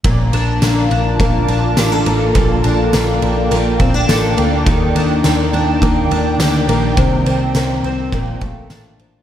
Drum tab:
RD |xxxxxxxx|xxxxxxxx|xxxxxxxx|xxxxxxxx|
TB |--x---x-|--x---x-|--x---x-|--x---x-|
SD |--o---o-|--o---o-|--o---o-|--o---o-|
BD |o---o---|o----o--|o---o---|o---oo--|